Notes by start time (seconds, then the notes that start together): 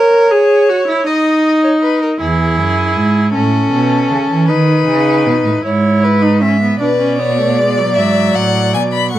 Already playing: A#4 C#5
0.31 G#4
0.69 F#4
0.88 E4
1.06 D#4 D#5
1.64 C#5
1.82 B4
2.02 A#4
2.20 E2 E4 G#4
2.58 F#2
2.96 G#2
3.34 A2 C#4 A4
3.72 B2
4.11 C#3
4.30 E3
4.48 D#3 D#4 B4
4.87 C#3
5.26 B2
5.45 A2
5.65 G#2 E4 C#5
6.03 B4
6.22 D#4
6.41 C#4 E5
6.61 B3
6.80 B2 D4 B4 D5
7.00 C#4
7.19 B3 C#5
7.38 A3
7.58 G#3 D5
7.78 F#3
7.97 G#2 E5
8.36 A2 F#5
8.74 B2 G#5
8.93 B5
9.13 A2 A3 F#5 C#6